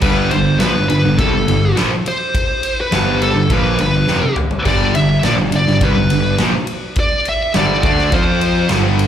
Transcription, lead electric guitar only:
0.02 0.30 B4 loud
0.31 0.58 C5 loud
0.60 0.87 B4 loud
0.89 1.19 B4 medium
1.19 1.73 A4 medium
2.08 2.81 C5 loud
2.81 3.22 B4 loud
3.23 3.49 A4 medium
3.53 3.80 B4 medium
3.81 4.34 B4 medium
4.67 4.95 D5 loud
4.96 5.24 E5 loud
5.25 5.32 D5 medium
5.56 5.81 D5 medium
5.84 6.37 B4 medium
7.00 7.25 D5 loud
7.29 7.54 E5 loud
7.57 7.82 D5 loud
7.83 8.13 D5 medium
8.13 8.67 C5 medium

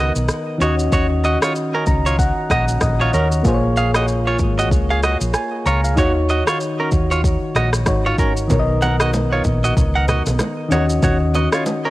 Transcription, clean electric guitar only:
0.00 0.12 F#4 medium
0.00 0.12 D#5 medium
0.62 0.75 F#4 medium
0.62 0.75 C#5 medium
0.93 1.07 F#4 medium
0.93 1.06 C#5 medium
1.25 1.38 F#4 medium
1.25 1.38 D#5 medium
1.43 1.53 F4 medium
1.43 1.52 C#5 medium
1.75 1.84 C#4 medium
1.75 1.84 A#4 medium
2.06 2.16 F4 medium
2.06 2.16 C#5 medium
2.51 2.65 F#4 medium
2.51 2.64 D#5 medium
3.01 3.11 F4 medium
3.01 3.10 C#5 medium
3.14 3.28 C#4 medium
3.14 3.27 A#4 medium
3.77 3.91 G#4 medium
3.77 3.90 F5 medium
3.96 4.06 F#4 medium
3.96 4.05 D#5 medium
4.27 4.37 F4 medium
4.27 4.37 C#5 medium
4.59 4.69 F#4 medium
4.59 4.68 D#5 medium
4.90 5.00 G#4 medium
4.90 5.00 F5 medium
5.04 5.17 F#4 medium
5.04 5.17 D#5 medium
5.67 5.80 F4 medium
5.67 5.80 C#5 medium
5.98 6.12 F#4 medium
5.98 6.11 C#5 medium
6.30 6.44 F#4 medium
6.30 6.43 D#5 medium
6.48 6.58 F4 medium
6.48 6.57 C#5 medium
6.80 6.90 C#4 medium
6.80 6.89 A#4 medium
7.11 7.21 F4 medium
7.11 7.21 C#5 medium
7.56 7.70 F#4 medium
7.56 7.69 D#5 medium
8.06 8.16 F4 medium
8.06 8.16 C#5 medium
8.19 8.33 C#4 medium
8.19 8.32 A#4 medium
8.82 8.96 A#4 medium
8.82 8.96 F#5 medium
9.01 9.11 F#4 medium
9.01 9.10 D#5 medium
9.32 9.42 F4 medium
9.32 9.42 C#5 medium
9.64 9.74 F#4 medium
9.64 9.73 D#5 medium
9.96 10.05 A#4 medium
9.96 10.05 F#5 medium
10.09 10.23 F#4 medium
10.09 10.22 D#5 medium
10.72 10.86 F#4 medium
10.72 10.85 C#5 medium
11.04 11.17 F#4 medium
11.04 11.17 C#5 medium
11.35 11.49 F#4 medium
11.35 11.48 D#5 medium
11.54 11.63 F4 medium
11.54 11.63 C#5 medium
11.85 11.90 C#4 medium
11.85 11.90 A#4 medium

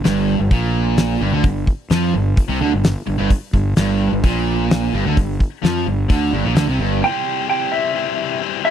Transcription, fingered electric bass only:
0.05 0.37 G1 medium
0.39 0.50 G1 medium
0.51 1.17 A#1 medium
1.21 1.32 G1 medium
1.32 1.43 D2 medium
1.44 1.66 G1 medium
1.90 2.12 F2 medium
2.14 2.36 G1 medium
2.49 2.60 C2 medium
2.61 2.72 D2 medium
2.74 2.95 G1 medium
3.08 3.18 G1 medium
3.20 3.30 G1 medium
3.53 3.75 G1 medium
3.77 4.10 G1 medium
4.12 4.23 G1 medium
4.23 4.89 A#1 medium
4.93 5.04 G1 medium
5.05 5.16 D2 medium
5.17 5.39 G1 medium
5.64 5.85 F2 medium
5.86 6.08 G1 medium
6.10 6.31 D2 medium
6.33 6.44 G1 medium
6.45 6.54 A#1 medium
6.55 6.66 D2 loud
6.67 6.78 C2 medium
6.79 7.01 G1 medium

